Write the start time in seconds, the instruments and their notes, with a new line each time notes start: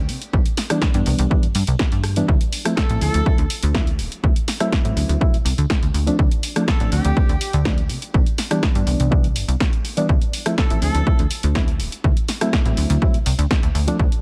Already playing: analog synth bass D2
0.09 analog synth bass C3, open hi-hat
0.22 closed hi-hat
0.33 analog synth bass C2, reed electric piano E3 G3 B3 D4, kick
0.46 closed hi-hat
0.57 snare, open hi-hat
0.70 reed electric piano E3 G3 B3 D4, cross-stick, closed hi-hat
0.82 kick, snare
0.94 analog synth bass G2, reed electric piano E3 G3 B3 D4, closed hi-hat
1.06 analog synth bass C2, open hi-hat
1.19 analog synth bass C2, closed hi-hat
1.31 reed electric piano E3 G3 B3 D4, kick
1.43 analog synth bass G2, closed hi-hat
1.55 analog synth bass G2, open hi-hat
1.67 analog synth bass C2, closed hi-hat
1.79 kick, snare
1.92 analog synth bass G2, closed hi-hat
2.04 cross-stick, open hi-hat
2.16 reed electric piano E3 G3 B3 D4, closed hi-hat
2.28 analog synth bass D2, reed electric piano F3 A3 E4, kick
2.41 closed hi-hat
2.53 open hi-hat
2.65 reed electric piano F3 A3 C4 E4, cross-stick, closed hi-hat
2.77 horn section A4, kick, snare
2.89 analog synth bass A1, reed electric piano F3 A3 C4 E4, closed hi-hat
3.01 analog synth bass D2, horn section A4, open hi-hat
3.14 analog synth bass D2, closed hi-hat
3.26 reed electric piano F3 A3 C4 E4, kick
3.38 analog synth bass D2, closed hi-hat
3.50 open hi-hat
3.63 analog synth bass D2, closed hi-hat
3.74 reed electric piano F3 A3 C4 E4, kick, snare
3.87 closed hi-hat
3.99 analog synth bass D1, open hi-hat
4.12 closed hi-hat
4.23 analog synth bass D2, reed electric piano F#3 A3 C4 E4, kick
4.36 closed hi-hat
4.48 snare, open hi-hat
4.60 reed electric piano F#3 A3 C4 E4, cross-stick, closed hi-hat
4.72 kick, snare
4.84 analog synth bass A1, reed electric piano F#3 A3 C4 E4, closed hi-hat
4.97 analog synth bass D2, open hi-hat
5.09 analog synth bass D2, closed hi-hat
5.21 reed electric piano F#3 A3 C4 E4, kick
5.34 analog synth bass C2, closed hi-hat
5.45 analog synth bass C2, open hi-hat
5.58 analog synth bass D2, closed hi-hat
5.70 kick, snare
5.83 analog synth bass D2, closed hi-hat
5.94 analog synth bass D2, open hi-hat
6.07 reed electric piano F3 A3 C4 D4, closed hi-hat
6.19 analog synth bass D2, reed electric piano F3 A3 D4, kick
6.31 closed hi-hat
6.43 open hi-hat
6.56 reed electric piano F3 A3 C4 D4, cross-stick, closed hi-hat
6.68 horn section A4, kick, snare
6.80 analog synth bass A1, reed electric piano F3 A3 C4 D4, closed hi-hat
6.92 analog synth bass D2, horn section G4, open hi-hat
7.05 analog synth bass D2, closed hi-hat
7.16 reed electric piano F3 A3 C4 D4, kick
7.29 analog synth bass D2, closed hi-hat
7.41 open hi-hat
7.53 analog synth bass D2, closed hi-hat
7.65 reed electric piano F3 A3 C4 D4, kick, snare
7.78 closed hi-hat
7.89 analog synth bass C3, open hi-hat
8.02 closed hi-hat
8.14 analog synth bass C2, reed electric piano E3 G3 B3 D4, kick
8.26 closed hi-hat
8.38 snare, open hi-hat
8.51 reed electric piano E3 G3 B3 D4, cross-stick, closed hi-hat
8.63 kick, snare
8.75 analog synth bass G2, reed electric piano E3 G3 B3 D4, closed hi-hat
8.87 analog synth bass C2, open hi-hat
9.00 analog synth bass C2, closed hi-hat
9.11 reed electric piano E3 G3 B3 D4, kick
9.24 closed hi-hat
9.36 analog synth bass G1, open hi-hat
9.48 analog synth bass C2, closed hi-hat
9.60 kick, snare
9.73 closed hi-hat
9.85 open hi-hat
9.97 reed electric piano E3 G3 B3 D4, closed hi-hat
10.09 analog synth bass D2, kick
10.22 closed hi-hat
10.33 open hi-hat
10.46 reed electric piano F3 A3 C4 E4, cross-stick, closed hi-hat
10.58 horn section A4, kick, snare
10.70 analog synth bass A1, reed electric piano F3 A3 C4 E4, closed hi-hat
10.82 analog synth bass D2, horn section A4, open hi-hat
10.95 analog synth bass D2, closed hi-hat
11.06 reed electric piano F3 A3 C4 E4, kick
11.19 analog synth bass D2, closed hi-hat
11.31 open hi-hat
11.43 analog synth bass D2, closed hi-hat
11.55 reed electric piano F3 A3 C4 E4, kick, snare
11.68 closed hi-hat
11.80 analog synth bass D1, open hi-hat
11.92 closed hi-hat
12.04 analog synth bass D2, reed electric piano F#3 A3 C4 E4, kick
12.17 closed hi-hat
12.28 snare, open hi-hat
12.41 reed electric piano F#3 A3 C4 E4, cross-stick, closed hi-hat
12.53 kick, snare
12.66 analog synth bass A1, reed electric piano F#3 A3 C4 E4, closed hi-hat
12.77 analog synth bass D2, open hi-hat
12.90 analog synth bass D2, closed hi-hat
13.02 reed electric piano F#3 A3 C4 E4, kick
13.14 analog synth bass C2, closed hi-hat
13.26 analog synth bass C2, open hi-hat
13.39 analog synth bass D2, closed hi-hat
13.51 kick, snare
13.63 analog synth bass D2, closed hi-hat
13.75 analog synth bass D2, open hi-hat
13.87 reed electric piano F3 A3 C4 D4, closed hi-hat
13.99 analog synth bass D2, kick
14.12 closed hi-hat